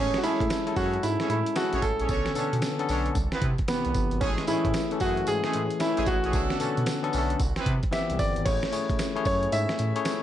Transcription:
Already playing: analog synth bass A1, tine electric piano G#3 C#4 E4 A4, grand piano C#4, horn section C#4 G#4 A4 C#5
0.14 grand piano F#4, snare, closed hi-hat
0.23 analog synth bass A2, tine electric piano G#3 C#4 E4 A4, horn section C#4 G#4 A4 C#5, grand piano E4, closed hi-hat, tambourine
0.40 analog synth bass A2, kick, closed hi-hat
0.50 snare, closed hi-hat, tambourine
0.66 tine electric piano C#4 E4 G#4 A4, closed hi-hat
0.76 analog synth bass F#2, horn section C#4 G#4 A4 C#5, grand piano F#4, kick, open hi-hat, tambourine
0.93 closed hi-hat
1.03 analog synth bass G#2, grand piano E4, closed hi-hat, tambourine
1.20 horn section C#4 G#4 A4 C#5, snare, closed hi-hat
1.30 analog synth bass A2, grand piano E4, closed hi-hat
1.46 closed hi-hat
1.56 tine electric piano C#4 E4 G#4 A4, grand piano F#4, snare, closed hi-hat, tambourine
1.73 analog synth bass A1, horn section C#4 G#4 A4 C#5, closed hi-hat
1.82 analog synth bass A1, grand piano A4, kick, closed hi-hat, tambourine
1.99 analog synth bass A#1, horn section C#4 G#4 A4 C#5, closed hi-hat
2.09 analog synth bass B1, tine electric piano D3 B3 C#4 A4, horn section C#4 D4 A4 C#5, kick, closed hi-hat, tambourine
2.26 snare, closed hi-hat
2.35 analog synth bass B2, tine electric piano D3 B3 C#4 A4, horn section C#4 D4 A4 C#5, closed hi-hat, tambourine
2.53 analog synth bass B2, closed hi-hat
2.62 snare, closed hi-hat, tambourine
2.79 tine electric piano D3 B3 C#4 A4, closed hi-hat
2.89 analog synth bass B1, horn section C#4 D4 A4 C#5, open hi-hat, tambourine
3.06 closed hi-hat
3.15 analog synth bass C2, kick, closed hi-hat, tambourine
3.32 horn section B3 C4 E4 B4, snare, closed hi-hat
3.42 analog synth bass C3, kick, closed hi-hat
3.58 kick, closed hi-hat
3.68 tine electric piano C3 E3 B3 G4, grand piano B3, snare, closed hi-hat, tambourine
3.85 analog synth bass C2, closed hi-hat
3.94 analog synth bass G1, kick, closed hi-hat, tambourine
4.11 analog synth bass G#1, closed hi-hat
4.21 analog synth bass A1, tine electric piano E3 A3 C#4 G#4, horn section G#3 A3 C#4 G#4, grand piano C#4, kick, closed hi-hat, tambourine
4.38 snare, closed hi-hat
4.47 analog synth bass A2, tine electric piano E3 A3 C#4 G#4, horn section G#3 A3 C#4 G#4, grand piano E4, closed hi-hat, tambourine
4.65 analog synth bass A2, kick, closed hi-hat
4.74 snare, closed hi-hat, tambourine
4.91 tine electric piano E3 A3 C#4 A4, closed hi-hat
5.00 analog synth bass F#2, horn section G#3 A3 C#4 G#4, grand piano F#4, kick, open hi-hat, tambourine
5.17 closed hi-hat
5.27 analog synth bass G#2, grand piano G#4, closed hi-hat, tambourine
5.44 horn section G#3 A3 C#4 G#4, snare, closed hi-hat
5.53 analog synth bass A2, closed hi-hat
5.70 closed hi-hat
5.80 tine electric piano E3 A3 C#4 E4, grand piano E4, snare, closed hi-hat, tambourine
5.97 analog synth bass A1, horn section G#3 A3 C#4 G#4, closed hi-hat
6.06 grand piano F#4, kick, closed hi-hat, tambourine
6.24 analog synth bass A#1, horn section G#3 A3 C#4 G#4, closed hi-hat
6.33 analog synth bass B1, tine electric piano D3 B3 C#4 A4, horn section A3 C#4 D4 A4, kick, closed hi-hat, tambourine
6.50 snare, closed hi-hat
6.59 analog synth bass B2, tine electric piano D3 B3 C#4 A4, horn section A3 C#4 D4 A4, closed hi-hat, tambourine
6.77 analog synth bass B2, closed hi-hat
6.86 snare, closed hi-hat, tambourine
7.03 tine electric piano D3 B3 C#4 A4, closed hi-hat
7.13 analog synth bass B1, horn section A3 C#4 D4 A4, open hi-hat, tambourine
7.30 closed hi-hat
7.39 analog synth bass C2, kick, closed hi-hat, tambourine
7.56 horn section B3 C4 E4 B4, snare, closed hi-hat
7.66 analog synth bass C3, kick, closed hi-hat
7.83 kick, closed hi-hat
7.91 tine electric piano E3 B3 C4 G4, grand piano E5, snare, closed hi-hat, tambourine
8.10 analog synth bass C2, closed hi-hat
8.19 analog synth bass G1, grand piano D5, kick, open hi-hat, tambourine
8.36 analog synth bass G#1, closed hi-hat
8.45 analog synth bass A1, tine electric piano A3 C#4 E4 G#4 C#5, grand piano C#5, kick, closed hi-hat, crash, tambourine
8.63 snare, closed hi-hat
8.72 analog synth bass A2, tine electric piano A3 C#4 E4 G#4 C#5, closed hi-hat, tambourine
8.90 analog synth bass A2, kick, closed hi-hat
8.99 snare, closed hi-hat, tambourine
9.15 tine electric piano A3 C#4 E4 G#4 C#5, closed hi-hat
9.25 analog synth bass F#2, grand piano C#5, kick, open hi-hat, tambourine
9.43 closed hi-hat
9.52 analog synth bass G#2, grand piano E5, closed hi-hat, tambourine
9.69 snare, closed hi-hat
9.79 analog synth bass A2, closed hi-hat
9.95 tine electric piano A3 C#4 E4 G#4 C#5, closed hi-hat
10.05 snare, closed hi-hat, tambourine

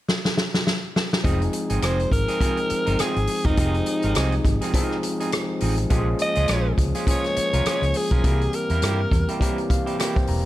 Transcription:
0.09 snare
0.25 snare
0.38 snare
0.54 snare
0.67 snare
0.96 snare
1.13 snare
1.23 fingered electric bass F1, tine electric piano F3 G#3 C4 D#4 G#4, clean electric guitar F3 C4 D#4 G#4, kick, closed hi-hat
1.42 closed hi-hat
1.53 muted clean electric guitar stroke, closed hi-hat
1.70 fingered electric bass G#1, clean electric guitar F3 C4 D#4 G#4, closed hi-hat
1.82 fingered electric bass F1, clean electric guitar F3 C4 D#4 G#4, alto saxophone C5, cross-stick, closed hi-hat
1.99 closed hi-hat
2.11 fingered electric bass G#1, alto saxophone A#4, muted clean electric guitar stroke, kick, closed hi-hat
2.28 clean electric guitar F3 C4 D#4 G#4, cross-stick, closed hi-hat
2.40 tine electric piano F3 G#3 C4 D#4 G#4, clean electric guitar F3 C4 D#4 G#4, kick, closed hi-hat
2.57 closed hi-hat
2.70 muted clean electric guitar stroke, muted fingered electric bass stroke, closed hi-hat
2.86 fingered electric bass G1, clean electric guitar F3 C4 D#4 A#4, closed hi-hat
2.99 clean electric guitar F3 C4 D#4 G#4, alto saxophone G#4, cross-stick, closed hi-hat
3.16 fingered electric bass G#1, closed hi-hat
3.27 muted clean electric guitar stroke, open hi-hat
3.45 fingered electric bass E1, clean electric guitar F3 C4 D#4 A#4, alto saxophone D#4, kick, closed hi-hat
3.57 fingered electric bass F1, tine electric piano F3 G#3 C4 D#4 G4, clean electric guitar F3 C4 D#4 A#4, kick, closed hi-hat
3.65 tine electric piano G#4
3.74 closed hi-hat
3.86 muted clean electric guitar stroke, closed hi-hat
4.02 fingered electric bass G#1, clean electric guitar F3 C4 D#4 A#4, closed hi-hat
4.15 fingered electric bass C2, clean electric guitar F3 C4 D#4 G#4, cross-stick, closed hi-hat
4.32 closed hi-hat
4.45 fingered electric bass G#1, muted clean electric guitar stroke, kick, closed hi-hat
4.61 clean electric guitar F3 C4 D#4 G#4, cross-stick, closed hi-hat
4.74 tine electric piano F3 G#3 C4 D#4 G#4, clean electric guitar F3 C4 D#4 A#4, kick, closed hi-hat
4.91 cross-stick
5.03 muted clean electric guitar stroke, closed hi-hat
5.20 clean electric guitar F3 C4 D#4 G#4, closed hi-hat
5.32 muted clean electric guitar stroke, cross-stick, closed hi-hat
5.60 fingered electric bass A1, clean electric guitar F3 C4 D#4 G#4, open hi-hat
5.78 muted clean electric guitar stroke, closed hi-hat
5.90 fingered electric bass A#1, tine electric piano F3 G#3 A#3 C#4 G4, clean electric guitar G#3 C#4 F4 G#4, kick, closed hi-hat
5.99 tine electric piano G#4
6.19 alto saxophone D#5, muted clean electric guitar stroke, closed hi-hat
6.35 fingered electric bass C#2, clean electric guitar G#3 C#4 F4 G#4, closed hi-hat
6.48 fingered electric bass A#1, clean electric guitar G#3 C#4 F4 G#4, cross-stick, closed hi-hat
6.78 fingered electric bass C#2, muted clean electric guitar stroke, kick, closed hi-hat
6.95 clean electric guitar G#3 C#4 F4 G#4, cross-stick, closed hi-hat
7.06 tine electric piano F3 G#3 A#3 C#4 G#4, clean electric guitar G#3 C#4 F4 G#4, kick, closed hi-hat
7.11 alto saxophone C#5
7.24 cross-stick, closed hi-hat
7.36 muted clean electric guitar stroke, muted fingered electric bass stroke, closed hi-hat
7.53 fingered electric bass C2, clean electric guitar G#3 C#4 F4 A#4, closed hi-hat
7.66 clean electric guitar G#3 C#4 F4 G#4, muted fingered electric bass stroke, cross-stick, closed hi-hat
7.82 fingered electric bass C#2, closed hi-hat
7.94 alto saxophone G#4, muted clean electric guitar stroke, open hi-hat
8.11 fingered electric bass B1, clean electric guitar G#3 C#4 F4 A#4, kick, closed hi-hat
8.23 fingered electric bass C2, tine electric piano E3 G3 A#3 C4 F#4, clean electric guitar G3 A#3 E4 A#4, kick, closed hi-hat
8.32 tine electric piano G4
8.41 closed hi-hat
8.53 alto saxophone A#4, muted clean electric guitar stroke, closed hi-hat
8.70 fingered electric bass E2, clean electric guitar G3 A#3 E4 A#4, closed hi-hat
8.82 fingered electric bass G2, clean electric guitar G3 A#3 E4 G4, cross-stick, closed hi-hat
9.11 fingered electric bass E2, muted clean electric guitar stroke, kick, closed hi-hat
9.28 clean electric guitar G3 A#3 E4 G4, closed hi-hat
9.40 tine electric piano E3 G3 A#3 C4 G4, clean electric guitar G3 A#3 E4 A#4, kick, closed hi-hat
9.58 closed hi-hat
9.70 tine electric piano F5, muted clean electric guitar stroke, kick, closed hi-hat
9.86 clean electric guitar G3 A#3 E4 G4, closed hi-hat
9.99 clean electric guitar G3 A#3 E4 G4, tine electric piano G4 A#4 G5, cross-stick, closed hi-hat
10.16 tine electric piano C5, kick, closed hi-hat
10.27 fingered electric bass E1, tine electric piano A#5, muted clean electric guitar stroke, open hi-hat

